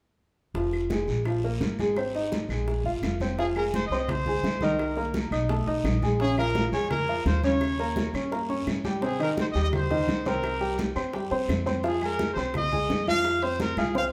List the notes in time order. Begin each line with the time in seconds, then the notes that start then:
0.54 F1 F3 F4, high bongo, high conga, long guiro
0.72 high bongo, high conga, claves
0.90 G#3 G#4, high bongo, high conga, short guiro
1.07 A#1, high bongo, high conga, short guiro
1.25 F3 F4, high bongo, high conga, long guiro, claves
1.44 A#3 A#4, high bongo, high conga
1.61 G#1, high bongo, low bongo, high conga, short guiro
1.79 G#3 G#4, high conga, short guiro
1.97 C4 C5, high bongo, high conga, long guiro, claves
2.15 D#4 D#5, high bongo, high conga
2.32 high bongo, high conga, short guiro
2.49 A#1 G#3 G#4, high bongo, high conga, short guiro, claves
2.68 high bongo, high conga, long guiro
2.84 G1 F4 F5, high bongo, high conga
3.02 F1, high bongo, low bongo, high conga, short guiro, claves
3.20 C4 C5, high conga, short guiro
3.38 F3 F4 G#4 F5, high bongo, high conga, long guiro
3.56 G#3 G#4 A#4 G#5, high bongo, high conga, claves
3.74 C5, high bongo, high conga, short guiro
3.86 C2 D#5
3.91 C4 C5 C6, high bongo, high conga, short guiro
3.99 D#5
4.08 C5, high bongo, high conga, low conga, long guiro, claves
4.26 G#3 G#4 G#5, high bongo, high conga, low conga
4.43 C2, high bongo, low bongo, high conga, short guiro
4.61 D#3 D#4 A#4 D#5, high conga, short guiro
4.79 high bongo, high conga, long guiro, claves
4.96 A#3 A#4 A#5, high bongo, high conga
5.14 high bongo, high conga, short guiro
5.31 B1 D#4 D#5 D#6, high bongo, high conga, short guiro, claves
5.49 A3 A4 A5, high bongo, high conga, long guiro
5.67 B1 D#4 D#5 D#6, high bongo, high conga
5.84 A#1, high bongo, low bongo, high conga, short guiro, claves
6.02 G#3 G#4 G#5, high conga, short guiro
6.20 C#3 C#4 G#4 C#5, high bongo, high conga, long guiro
6.38 F3 F4 A#4 F5, high bongo, high conga, claves
6.55 high bongo, high conga, short guiro
6.72 F2 G#3 G#4 C#5 G#5, high bongo, high conga, short guiro
6.90 A#4, high bongo, high conga, low conga, long guiro, claves
7.08 F3 F4 F5, high bongo, high conga
7.25 D#2 C5, high bongo, low bongo, high conga, short guiro
7.43 C#3 C#4 C#5, high conga, short guiro
7.61 high bongo, high conga, long guiro, claves
7.79 A#3 A#4 A#5, high bongo, high conga
7.96 high bongo, high conga, short guiro
8.14 G2 C#4 C#5 C#6, high bongo, high conga, short guiro, claves
8.32 A#3 A#4 A#5, high bongo, high conga, long guiro
8.49 C#4 C#5 C#6, high bongo, high conga
8.66 G#2, high bongo, low bongo, high conga, short guiro, claves
8.84 G3 G4 G5, high conga, short guiro
9.02 C3 C4 G#4 C5, high bongo, high conga, long guiro
9.19 D#3 D#4 A#4 D#5, high bongo, high conga, claves
9.37 C5, high bongo, high conga, short guiro
9.52 D#2 G3 G4 D#5 G5, high bongo, high conga, short guiro
9.63 D#5
9.73 C5, high bongo, high conga, low conga, long guiro, claves
9.90 D#3 D#4 D#5, high bongo, high conga, low conga
10.07 C2, high bongo, low bongo, high conga, short guiro
10.25 C3 C4 A#4 C5, high conga, short guiro
10.43 high bongo, high conga, long guiro, claves
10.60 G3 G4 G5, high bongo, high conga
10.78 high bongo, high conga, short guiro
10.95 G2 C4 C5 C6, high bongo, high conga, short guiro, claves
11.13 G3 G4 G5, high bongo, high conga, long guiro
11.31 G2 C4 C5 C6, high bongo, high conga
11.48 F2, high bongo, low bongo, high conga, short guiro, claves
11.66 C4 C5 C6, high conga, short guiro
11.83 F3 F4 G#4 F5, high bongo, high conga, long guiro
12.01 G#3 G#4 A#4 G#5, high bongo, high conga, claves
12.19 high bongo, high conga, short guiro
12.33 C2 C4 C5 C6, high bongo, high conga
12.37 short guiro
12.54 D#5, high bongo, high conga, low conga, long guiro, claves
12.72 G#3 G#4 G#5, high bongo, high conga, low conga
12.89 F2, high bongo, low bongo, high conga, short guiro
13.07 F3 F4 F5, high conga, short guiro
13.25 high bongo, high conga, long guiro, claves
13.42 C4 C5 C6, high bongo, high conga
13.60 A#4, high bongo, high conga, short guiro
13.77 C2 F4 G#4 F5 F6, high conga, short guiro, claves
13.95 C4 C5 F5 C6, low bongo, long guiro